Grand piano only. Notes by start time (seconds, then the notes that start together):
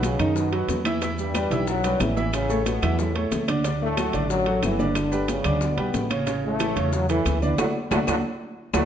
Already playing: F#3 F#4 B4
0.19 D#3 D#4 D#5
0.53 F#3 F#4 B4
0.85 E3 E4 E5
1.02 E3 E4 E5
1.35 G3 G4 B4
1.51 E3 E4 E5
1.84 G3 G4 B4
2.16 E3 E4 E5
2.49 A3 A4 C#5
2.82 E3 E4 E5
3.15 A3 A4 C#5
3.48 D3 D4 D5
3.64 D3 D4 D5
3.97 F#3 F#4 A4
4.13 D3 D4 D5
4.46 F#3 F#4 A4
4.79 D3 D4 D5
5.12 G3 G4 B4
5.44 D3 D4 D5
5.77 G3 G4 B4
6.10 C#3 C#4 C#5
6.26 C#3 C#4 C#5
6.59 E3 E4 A4
6.76 C#3 C#4 C#5
7.09 E3 E4 A4
7.42 D3 D4 D5
7.59 A3 D4 F#4
7.92 A3 D4 F#4
8.08 A3 D4 F#4
8.74 A3 D4 F#4